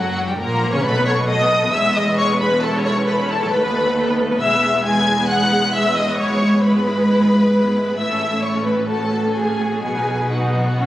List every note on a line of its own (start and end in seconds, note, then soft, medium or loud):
0.00 0.28 F#1 medium
0.00 0.28 F#2 medium
0.00 0.28 F#3 medium
0.00 0.28 F#4 medium
0.00 0.28 F#5 medium
0.26 0.39 G2 medium
0.26 0.33 G3 medium
0.26 0.38 G4 medium
0.26 0.40 G5 medium
0.37 0.72 A#1 medium
0.37 0.73 A#2 medium
0.37 0.73 A#3 medium
0.37 0.71 A#4 medium
0.37 0.72 A#5 medium
0.73 0.84 C#3 medium
0.73 0.85 C#4 medium
0.73 0.84 C#5 medium
0.73 0.84 C#6 medium
0.84 1.69 B1 medium
0.84 1.70 B2 medium
0.84 0.95 A3 medium
0.84 0.95 A4 medium
0.84 1.06 B4 medium
0.84 1.07 B5 loud
0.96 1.07 B3 medium
0.96 1.07 B4 medium
1.07 1.18 A3 medium
1.07 1.18 A4 medium
1.07 1.15 C#5 medium
1.07 1.29 C#6 medium
1.18 1.29 B3 medium
1.18 1.29 B4 medium
1.29 1.40 A3 soft
1.29 1.40 A4 medium
1.29 1.73 D#5 medium
1.29 1.73 D#6 loud
1.42 1.52 B3 medium
1.42 1.52 B4 medium
1.52 1.63 A3 medium
1.52 1.63 A4 medium
1.63 1.74 B3 medium
1.63 1.74 B4 medium
1.72 3.52 E1 medium
1.72 3.52 E2 medium
1.72 1.84 G#3 medium
1.72 1.84 G#4 medium
1.72 1.95 E5 medium
1.72 1.95 E6 loud
1.86 1.96 B3 soft
1.86 1.96 B4 soft
1.95 2.07 G#3 soft
1.95 2.07 G#4 medium
1.95 2.18 D#5 medium
1.95 2.03 D#6 medium
2.08 2.18 B3 medium
2.08 2.18 B4 medium
2.16 2.29 G#3 medium
2.16 2.29 G#4 medium
2.16 2.27 C#5 medium
2.16 2.39 C#6 loud
2.30 2.41 B3 medium
2.30 2.41 B4 soft
2.40 2.52 G#3 medium
2.40 2.52 G#4 medium
2.40 2.63 B4 medium
2.40 2.62 B5 medium
2.53 2.63 B3 medium
2.53 2.63 B4 soft
2.63 2.74 E4 medium
2.63 2.85 A4 medium
2.63 2.74 A4 medium
2.63 2.85 A5 medium
2.76 2.86 C#4 medium
2.76 2.86 C#5 medium
2.85 2.97 E4 medium
2.85 2.97 A4 medium
2.85 2.94 C#5 medium
2.85 3.07 C#6 medium
2.97 3.08 C#4 medium
2.97 3.08 C#5 medium
3.07 3.18 E4 medium
3.07 3.18 A4 soft
3.07 3.15 B4 medium
3.07 3.29 B5 medium
3.19 3.30 C#4 medium
3.19 3.30 C#5 medium
3.30 3.41 E4 medium
3.30 3.52 A4 medium
3.30 3.41 A4 medium
3.30 3.52 A5 medium
3.41 3.52 C#4 medium
3.41 3.52 C#5 medium
3.51 4.40 D#2 medium
3.51 4.41 D#2 medium
3.51 3.62 A3 medium
3.51 3.62 A4 medium
3.51 4.19 B4 medium
3.51 4.18 B5 medium
3.64 3.74 B3 soft
3.64 3.74 B4 medium
3.75 3.85 A3 medium
3.75 3.85 A4 medium
3.85 3.96 B3 medium
3.85 3.97 B4 medium
3.97 4.07 A3 medium
3.97 4.07 A4 medium
4.08 4.18 B3 soft
4.08 4.18 B4 soft
4.18 4.29 A3 medium
4.18 4.30 A4 medium
4.29 4.40 B3 soft
4.29 4.40 B4 medium
4.40 6.15 E1 medium
4.40 6.15 E2 medium
4.40 4.51 G#3 medium
4.40 4.51 G#4 medium
4.40 4.82 E5 medium
4.40 4.82 E6 loud
4.52 4.63 B3 medium
4.52 4.63 B4 medium
4.63 4.74 G#3 medium
4.63 4.74 G#4 medium
4.74 4.85 B3 medium
4.74 4.85 B4 medium
4.85 4.95 G#3 medium
4.85 4.96 G#4 medium
4.85 5.29 G#5 medium
4.85 5.29 G#6 medium
4.96 5.07 B3 medium
4.96 5.07 B4 soft
5.07 5.18 G#3 medium
5.07 5.18 G#4 medium
5.18 5.29 B3 soft
5.18 5.29 B4 medium
5.28 5.40 G#3 medium
5.28 5.40 G#4 medium
5.28 5.75 F#5 medium
5.28 5.73 F#6 loud
5.40 5.52 B3 soft
5.40 5.52 B4 soft
5.52 5.63 G#3 medium
5.52 5.63 G#4 medium
5.62 5.74 B3 medium
5.62 5.74 B4 medium
5.74 5.85 G#3 medium
5.74 5.85 G#4 medium
5.74 5.96 E5 medium
5.74 5.97 E6 medium
5.85 5.97 B3 soft
5.85 5.97 B4 soft
5.96 6.08 G#3 medium
5.96 6.08 G#4 soft
5.96 6.19 D#5 medium
5.96 6.19 D#6 medium
6.08 6.19 B3 soft
6.08 6.19 B4 soft
6.18 7.94 G#1 medium
6.18 7.94 G#2 medium
6.18 6.29 G#3 medium
6.18 6.29 E4 medium
6.18 6.63 C#5 medium
6.18 6.63 C#6 medium
6.30 6.41 B3 soft
6.30 6.41 G#4 soft
6.42 6.53 G#3 soft
6.42 6.53 E4 medium
6.52 6.64 B3 medium
6.52 6.64 G#4 soft
6.63 6.74 G#3 soft
6.63 6.74 E4 soft
6.63 7.98 B4 medium
6.63 7.95 B5 medium
6.75 6.86 B3 medium
6.75 6.86 G#4 soft
6.86 6.97 G#3 medium
6.86 6.97 E4 soft
6.97 7.08 B3 soft
6.97 7.08 G#4 soft
7.09 7.19 G#3 soft
7.09 7.19 E4 medium
7.20 7.31 B3 soft
7.20 7.31 G#4 soft
7.31 7.42 G#3 soft
7.31 7.42 E4 soft
7.42 7.53 B3 soft
7.42 7.53 G#4 soft
7.53 7.64 G#3 medium
7.53 7.64 E4 soft
7.65 7.76 B3 soft
7.65 7.76 G#4 soft
7.76 7.87 G#3 medium
7.76 7.87 E4 soft
7.87 7.99 B3 soft
7.87 7.98 G#4 soft
7.98 9.83 A1 medium
7.98 9.83 A2 medium
7.98 8.09 A3 soft
7.98 8.09 E4 soft
7.98 8.43 E5 medium
7.98 8.42 E6 medium
8.10 8.21 C#4 soft
8.10 8.21 A4 soft
8.21 8.32 A3 soft
8.21 8.32 E4 soft
8.32 8.43 C#4 soft
8.32 8.43 A4 soft
8.42 8.54 A3 soft
8.42 8.54 E4 soft
8.42 8.66 C#5 medium
8.42 8.66 C#6 medium
8.55 8.66 C#4 soft
8.55 8.66 A4 soft
8.65 8.77 A3 soft
8.65 8.77 E4 soft
8.65 8.88 B4 medium
8.65 8.73 B5 medium
8.76 8.88 C#4 soft
8.76 8.89 A4 soft
8.88 8.99 A3 soft
8.88 8.99 F#4 soft
8.88 9.35 A4 medium
8.88 9.35 A5 medium
8.99 9.12 C#4 soft
8.99 9.12 A4 soft
9.11 9.23 A3 soft
9.11 9.23 F#4 soft
9.23 9.35 C#4 soft
9.23 9.35 A4 soft
9.34 9.46 A3 soft
9.34 9.46 F#4 soft
9.34 9.84 G#4 medium
9.34 9.80 G#5 medium
9.47 9.59 C#4 soft
9.47 9.59 A4 soft
9.60 9.71 A3 soft
9.60 9.71 F#4 soft
9.72 9.84 C#4 soft
9.72 9.84 A4 soft
9.81 10.86 B1 medium
9.81 10.86 B2 medium
9.81 9.94 B3 soft
9.81 9.94 F#4 soft
9.81 10.29 G#5 medium
9.85 10.31 G#4 medium
9.95 10.07 D#4 soft
9.95 10.07 B4 soft
10.07 10.19 B3 soft
10.07 10.19 F#4 soft
10.19 10.30 D#4 soft
10.19 10.31 B4 soft
10.31 10.53 D#4 soft
10.31 10.86 F#4 soft
10.31 10.86 F#5 medium
10.56 10.79 B3 medium
10.79 10.86 C#4 medium